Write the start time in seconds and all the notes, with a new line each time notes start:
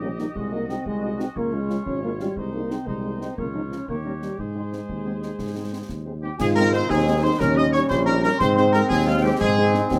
Already playing: A#1 G4 D#5
0.01 G3 A#3 C#4 G4 D#5
0.17 G3 A#3 D#4 G4 D#5, snare
0.35 C2 G#3 F#4, concert bass drum
0.52 G#3 A#3 D#4 F#4 D#5
0.68 G#3 C4 D#4 F#4 D#5, snare
0.85 C2 G#3, concert bass drum
1.02 G#3 D#4 F#4 D#5
1.18 G#3 C4 D#4 F#4 D#5, snare
1.36 C#2 A#3 F4 C#5, concert bass drum
1.53 G#3 C#4 F4 F5
1.69 G#3 C#4 F4 F5, snare
1.85 G#1 C#4, concert bass drum
2.03 G#3 A#3 C#4 F4 F5
2.19 G3 G#3 C#4 F4 F5, snare
2.36 C2 G#3 D#4 C5, concert bass drum
2.53 G#3 A#3 D#4 C5
2.71 G#3 C4 D#4 C5, snare
2.87 C2 G#3 D#4 C5, concert bass drum
3.04 G#3 D#4 C5
3.20 G#3 C4 D#4 C5, snare
3.37 C#2 A#3 F4 C#5, concert bass drum
3.54 F3 C#4 D#4 F4 A#4
3.71 F3 C#4 F4 A#4, snare
3.88 D#2 A#3 G4 C#5, concert bass drum
4.04 G3 C#4 D#4 A#4
4.21 G3 C#4 D#4 A#4, snare
4.38 G#2 G#3 G#4 C5, concert bass drum
4.55 G#3 C4 D#4 C5
4.72 G#3 C4 D#4 C5, snare
4.89 D#2, concert bass drum
5.05 G#3 C4 D#4 C5
5.22 G#3 C4 D#4 C5, snare
5.38 G#2, concert bass drum, snare
5.55 G#3 C4 D#4 C5
5.72 G#3 C4 D#4 C5
5.89 D#2, concert bass drum, snare
6.05 G#3 C4 D#4 C5
6.22 G#3 C4 D#4 G4 C5 G5
6.38 G#2 D#3 C4 F4 G#4 G#5, concert bass drum, snare, crash
6.55 G#3 C4 D#4 A#4 A#5, snare
6.72 G#3 C4 D#4 C5 C6, snare
6.89 D#2 D#4 G#4 G#5, concert bass drum, snare
7.06 G#3 C4 D#4
7.22 G#3 C4 D#4 C5 C6
7.39 D#2 G3 C#4 A#4 A#5, concert bass drum, snare
7.56 G3 C#4 D#4 D#5 D#6
7.72 G3 C#4 D#4 C#5 C#6, snare
7.89 A#1 C5 C6, concert bass drum, snare
8.06 G3 C#4 D#4 A#4 A#5
8.22 G3 C#4 D#4 A#4 A#5, snare
8.39 G#2 G#3 C4 C5 C6, concert bass drum, snare, crash
8.55 G#3 C4 D#4 C5 C6, snare
8.72 G#3 C4 D#4 A#4 A#5, snare
8.88 D#2 G#4 G#5, concert bass drum, snare
9.06 G#3 C4 D#4 F4 F5
9.22 G#3 C4 D#4 G4 G5
9.39 G#2 D#4 G#4 G#5, concert bass drum, snare
9.58 G#3 C4 D#4
9.74 G#3 C4 D#4, snare
9.91 D#2 C4, concert bass drum, snare